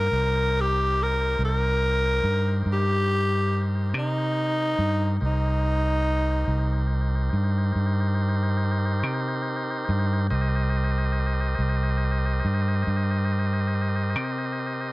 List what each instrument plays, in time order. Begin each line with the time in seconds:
Already playing: tenor saxophone A#4
0.12 fingered electric bass C2, tonewheel organ D#4 G4 A#4 C5
0.61 tenor saxophone G4
1.03 tenor saxophone A#4
1.39 fingered electric bass C2
1.45 tenor saxophone A#4
2.24 fingered electric bass G2
2.66 fingered electric bass G2
2.72 tenor saxophone G4
3.94 fingered electric bass C3
3.98 tenor saxophone D#4
4.79 fingered electric bass G2
5.20 fingered electric bass C2, tonewheel organ D#4 G4 A#4 C5
5.26 tenor saxophone D#4
6.48 fingered electric bass C2
7.33 fingered electric bass G2
7.76 fingered electric bass G2
9.03 fingered electric bass C3
9.89 fingered electric bass G2
10.30 fingered electric bass C2, tonewheel organ G4 A#4 C5 D#5
11.59 fingered electric bass C2
12.45 fingered electric bass G2
12.87 fingered electric bass G2
14.16 fingered electric bass C3